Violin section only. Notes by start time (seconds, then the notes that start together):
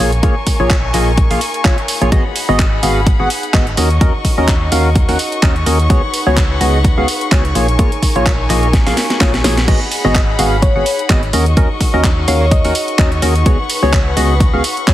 0.00 A#4 G#5 C#6
2.12 G#4 F#5 B5
3.77 F#4 D#5 C#6
5.90 B4 F#5
7.55 A#4 G#5
9.68 G#4 F#5 B5
11.33 F#4 D#5 C#6
13.46 B4 F#5